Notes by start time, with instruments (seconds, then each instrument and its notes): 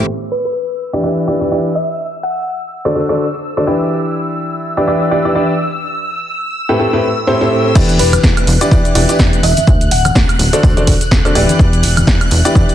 0.07 string machine E6, crash
0.32 synth pluck B4
0.45 synth pluck B4
0.93 grand piano E3 D4 E4 G4 B4 D5
1.03 grand piano E3 D4 E4 G4 B4 D5
1.27 grand piano E3 D4 E4 G4 B4 D5
1.41 grand piano E3 D4 E4 G4 B4 D5
1.51 grand piano E3 D4 E4 G4 B4 D5
1.75 synth pluck E5
2.23 synth pluck F#5
2.85 grand piano D3 D4 F#4 A4 C5 D5
2.95 grand piano D3 D4 F#4 A4 C5 D5
3.09 grand piano D3 D4 F#4 A4 C5 D5
3.57 grand piano D3 D4 F#4 A4 C5 D5
3.67 grand piano E3 D4 E4 G4 B4 D5
4.77 grand piano E3 D4 E4 G4 B4 D5
4.87 grand piano E3 D4 E4 G4 B4 D5
5.11 grand piano E3 D4 E4 G4 B4 D5
5.25 grand piano E3 D4 E4 G4 B4 D5
5.35 grand piano E3 D4 E4 G4 B4 D5
6.69 grand piano A2 C4 E4 G4 A4 B4
6.79 grand piano A2 C4 E4 G4 A4 B4
6.93 grand piano A2 C4 E4 G4 A4 B4
7.27 grand piano A2 C4 E4 G4 A4 C5
7.41 grand piano A2 C4 E4 G4 A4 C5
7.75 analog synth bass E2, grand piano E3 D4 E4 G4 B4 D5, string machine F#6, kick, crash, tambourine, cabasa
7.89 closed hi-hat, cabasa
7.99 analog synth bass E1, synth pluck B4, open hi-hat, tambourine
8.13 synth pluck B4, closed hi-hat, tambourine, high conga, cabasa, high woodblock
8.23 analog synth bass E2, kick, snare, tambourine, cabasa
8.37 closed hi-hat, cabasa, high woodblock
8.47 analog synth bass E1, open hi-hat, tambourine
8.61 grand piano E3 D4 E4 G4 B4 D5, closed hi-hat, tambourine, cabasa
8.71 analog synth bass E2, grand piano E3 D4 E4 G4 B4 D5, kick, tambourine, cabasa
8.85 closed hi-hat, cabasa
8.95 analog synth bass E1, grand piano E3 D4 E4 G4 B4 D5, open hi-hat, tambourine
9.09 grand piano E3 D4 E4 G4 B4 D5, closed hi-hat, tambourine, cabasa
9.19 analog synth bass E2, grand piano E3 D4 E4 G4 B4 D5, kick, snare, tambourine, cabasa
9.33 closed hi-hat, cabasa
9.43 analog synth bass E1, synth pluck E5, open hi-hat, tambourine
9.57 closed hi-hat, tambourine, high conga, cabasa
9.67 analog synth bass D2, kick, tambourine, cabasa
9.81 closed hi-hat, cabasa
9.91 analog synth bass D1, synth pluck F#5, open hi-hat, tambourine
10.05 closed hi-hat, tambourine, high conga, cabasa, high woodblock
10.15 analog synth bass D2, kick, snare, tambourine, cabasa
10.29 closed hi-hat, cabasa, high woodblock
10.39 analog synth bass D1, open hi-hat, tambourine
10.53 grand piano D3 D4 F#4 A4 C5 D5, closed hi-hat, tambourine, cabasa
10.63 analog synth bass D2, grand piano D3 D4 F#4 A4 C5 D5, kick, tambourine, cabasa
10.77 grand piano D3 D4 F#4 A4 C5 D5, closed hi-hat, high conga, cabasa
10.87 analog synth bass D1, kick, open hi-hat, tambourine
11.01 closed hi-hat, tambourine, cabasa
11.11 analog synth bass D2, kick, snare, tambourine, cabasa
11.25 grand piano D3 D4 F#4 A4 C5 D5, closed hi-hat, cabasa, high woodblock
11.35 analog synth bass D1, grand piano E3 D4 E4 G4 B4 D5, open hi-hat, tambourine
11.49 closed hi-hat, tambourine, high conga, cabasa
11.59 analog synth bass E2, kick, tambourine, cabasa
11.73 closed hi-hat, cabasa
11.83 analog synth bass E1, open hi-hat, tambourine
11.97 closed hi-hat, tambourine, high conga, cabasa, high woodblock
12.07 analog synth bass E2, kick, snare, tambourine, cabasa
12.21 closed hi-hat, cabasa, high woodblock
12.31 analog synth bass E1, open hi-hat, tambourine
12.45 grand piano E3 D4 E4 G4 B4 D5, closed hi-hat, tambourine, cabasa
12.55 analog synth bass E2, grand piano E3 D4 E4 G4 B4 D5, kick, tambourine, cabasa
12.69 closed hi-hat, cabasa